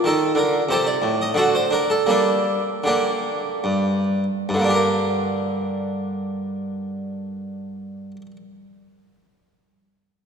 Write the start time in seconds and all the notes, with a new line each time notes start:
0.04 D#3 D#4 A4
0.35 D3 A#4
0.69 C3 G4 A4 C5
0.87 D5
1.02 A2
1.22 D#5
1.34 D3 F#4 A4 D5
1.55 C5
1.71 D4 A#4
1.90 A4
2.06 G3 A#3 D4 A4
2.84 D3 A#3 D4 G4
3.64 G2
4.49 G2
4.54 D3
4.59 A#3
4.64 D4
4.69 G4
4.74 A#4